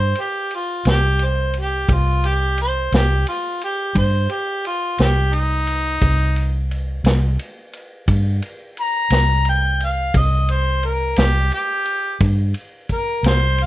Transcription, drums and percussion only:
0.15 ride
0.51 ride
0.85 snare, ride
1.19 ride
1.54 ride
1.89 kick, ride
2.24 ride
2.58 ride
2.92 snare, ride
3.27 ride
3.61 ride
3.95 kick, ride
4.29 ride
4.65 ride
4.98 snare, ride
5.33 ride
5.67 ride
6.02 kick, ride
6.36 ride
6.71 ride
7.04 snare, ride
7.39 ride
7.73 ride
8.08 kick, ride
8.42 ride
8.77 ride
9.10 snare, ride
9.45 ride
9.80 ride
10.14 kick, ride
10.49 ride
10.83 ride
11.16 snare, ride
11.52 ride
11.85 ride
12.20 kick, ride
12.54 ride
12.89 kick, ride
13.24 snare, ride
13.58 ride

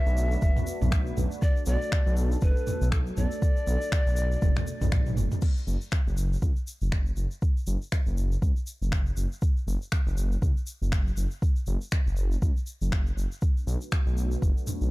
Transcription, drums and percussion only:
0.06 shaker
0.17 shaker
0.31 shaker
0.42 kick, shaker
0.57 mid tom, shaker
0.67 shaker
0.82 mid tom, shaker
0.92 finger snap, kick, shaker
1.06 shaker
1.17 mid tom, shaker
1.31 shaker
1.42 kick, shaker
1.56 shaker
1.66 shaker
1.82 shaker
1.92 finger snap, kick, shaker
2.07 shaker
2.17 shaker
2.32 shaker
2.41 kick, shaker
2.56 shaker
2.67 mid tom, shaker
2.82 shaker
2.92 finger snap, kick, shaker
3.07 shaker
3.17 mid tom, shaker
3.31 shaker
3.42 kick, shaker
3.56 shaker
3.67 shaker
3.82 shaker
3.92 finger snap, kick, shaker
4.07 shaker
4.16 shaker
4.32 shaker
4.42 kick, high tom, shaker
4.56 finger snap, mid tom, high tom, shaker
4.67 shaker
4.82 mid tom, shaker
4.92 finger snap, kick, mid tom, shaker
5.06 mid tom, shaker
5.17 mid tom, shaker
5.31 mid tom, shaker
5.41 kick, crash, shaker
5.57 shaker
5.68 shaker
5.81 shaker
5.92 finger snap, kick, shaker
6.07 shaker
6.17 shaker
6.33 shaker
6.42 kick, shaker
6.56 shaker
6.67 shaker
6.81 shaker
6.92 finger snap, kick, shaker
7.06 shaker
7.17 shaker
7.31 shaker
7.42 kick, shaker
7.57 shaker
7.67 shaker
7.82 shaker
7.92 finger snap, kick, shaker
8.06 shaker
8.17 shaker
8.32 shaker
8.42 kick, shaker
8.56 shaker
8.67 shaker
8.82 shaker
8.92 finger snap, kick, shaker
9.06 shaker
9.17 shaker
9.32 shaker
9.42 kick, shaker
9.57 shaker
9.68 shaker
9.82 shaker
9.92 finger snap, kick, shaker
10.07 shaker
10.17 shaker
10.32 shaker
10.42 kick, shaker
10.57 shaker
10.67 shaker
10.83 shaker
10.92 finger snap, kick, shaker
11.07 shaker
11.17 shaker
11.31 shaker
11.42 kick, shaker
11.56 shaker
11.66 shaker
11.81 shaker
11.92 finger snap, kick, shaker
12.07 shaker
12.17 shaker
12.32 shaker
12.42 kick, shaker
12.57 shaker
12.66 shaker
12.82 shaker
12.92 finger snap, kick, shaker
13.06 shaker
13.18 shaker
13.32 shaker
13.41 kick, shaker
13.57 shaker
13.68 shaker
13.81 shaker
13.92 finger snap, kick, shaker
14.07 shaker
14.17 shaker
14.31 shaker
14.42 kick, shaker
14.57 shaker
14.67 mid tom, shaker
14.81 shaker

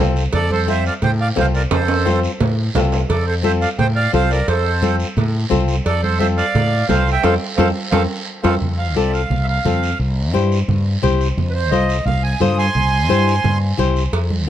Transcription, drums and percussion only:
0.16 short guiro
0.33 cowbell, low conga, long guiro
0.51 high conga
0.68 high conga, short guiro
0.85 short guiro
1.02 cowbell, low conga, long guiro
1.37 high conga, low conga, low timbale, short guiro
1.55 short guiro
1.71 cowbell, low conga, high timbale, long guiro
1.88 high timbale
2.05 high conga, low timbale, short guiro
2.23 short guiro
2.40 cowbell, low conga, low timbale, long guiro
2.75 high conga, low conga, low timbale, short guiro
2.92 low timbale, short guiro
3.10 cowbell, low conga, long guiro
3.44 high conga, short guiro
3.62 short guiro
3.79 cowbell, low conga, long guiro
4.12 high conga, short guiro
4.30 short guiro
4.48 cowbell, long guiro
4.83 high conga, short guiro
5.00 short guiro
5.17 cowbell, low conga, long guiro
5.51 high conga, low conga, short guiro
5.68 short guiro
5.86 cowbell, long guiro
6.04 high conga
6.21 high conga, short guiro
6.38 short guiro
6.55 cowbell, low conga, long guiro
6.89 high conga, low conga, low timbale, short guiro
7.08 short guiro
7.23 high conga, high timbale, long guiro
7.58 high conga, high timbale
7.92 high conga, high timbale, long guiro
8.44 high conga, high timbale, long guiro
8.62 low conga, long guiro
8.96 high conga, short guiro
9.14 short guiro
9.31 low conga, long guiro
9.65 high conga, low conga, short guiro
9.83 short guiro
10.00 long guiro
10.35 high conga, short guiro
10.52 short guiro
10.69 low conga, long guiro
11.03 high conga, low conga, short guiro
11.21 short guiro
11.38 low conga, long guiro
11.72 high conga, short guiro
11.89 short guiro
12.07 low conga, long guiro
12.41 high conga, low conga, short guiro
12.58 short guiro
12.75 low conga, long guiro
13.10 high conga, short guiro
13.28 short guiro
13.44 low conga, long guiro
13.79 high conga, low conga, short guiro
13.96 short guiro
14.13 cowbell, long guiro
14.30 high conga

